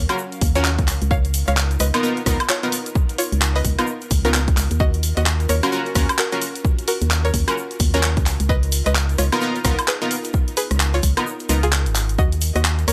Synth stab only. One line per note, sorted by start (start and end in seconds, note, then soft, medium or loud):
0.09 0.17 C#4 medium
0.09 0.17 F4 medium
0.09 0.17 F#4 medium
0.09 0.17 A#4 medium
0.55 0.69 C#4 loud
0.55 0.69 F4 medium
0.55 0.69 F#4 medium
0.55 0.69 A#4 loud
1.94 2.02 B3 medium
1.94 2.02 D#4 medium
1.94 2.02 F4 medium
1.94 2.02 A#4 loud
2.03 2.20 B3 loud
2.03 2.20 D#4 medium
2.03 2.20 F4 medium
2.03 2.20 A#4 loud
2.26 2.38 B3 medium
2.26 2.38 D#4 medium
2.26 2.38 F4 medium
2.26 2.38 A#4 loud
2.63 2.77 B3 medium
2.63 2.77 D#4 medium
2.63 2.77 F4 medium
2.63 2.77 A#4 medium
3.79 3.86 B3 medium
3.79 3.86 D#4 medium
3.79 3.86 F4 medium
3.79 3.86 A#4 medium
4.25 4.38 B3 loud
4.25 4.38 D#4 loud
4.25 4.38 F4 medium
4.25 4.38 A#4 loud
5.63 5.71 C#4 loud
5.63 5.71 F4 medium
5.63 5.71 F#4 medium
5.63 5.71 A#4 loud
5.72 5.89 C#4 loud
5.72 5.89 F4 medium
5.72 5.89 F#4 medium
5.72 5.89 A#4 loud
5.95 6.07 C#4 loud
5.95 6.07 F4 medium
5.95 6.07 F#4 medium
5.95 6.07 A#4 loud
6.32 6.46 C#4 medium
6.32 6.46 F4 medium
6.32 6.46 F#4 medium
6.32 6.46 A#4 medium
7.48 7.55 C#4 medium
7.48 7.55 F4 medium
7.48 7.55 F#4 medium
7.48 7.55 A#4 medium
7.94 8.08 C#4 loud
7.94 8.08 F4 medium
7.94 8.08 F#4 loud
7.94 8.08 A#4 loud
9.32 9.40 B3 medium
9.32 9.40 D#4 medium
9.32 9.40 F4 medium
9.32 9.40 A#4 loud
9.41 9.59 B3 medium
9.41 9.59 D#4 medium
9.41 9.59 F4 medium
9.41 9.59 A#4 loud
9.65 9.76 B3 loud
9.65 9.76 D#4 medium
9.65 9.76 F4 medium
9.65 9.76 A#4 loud
10.02 10.15 B3 medium
10.02 10.15 D#4 medium
10.02 10.15 F4 medium
10.02 10.15 A#4 medium
11.17 11.25 B3 medium
11.17 11.25 D#4 medium
11.17 11.25 F4 medium
11.17 11.25 A#4 loud
11.49 11.61 B3 medium
11.49 11.61 D#4 medium
11.49 11.61 F4 medium
11.49 11.61 A#4 medium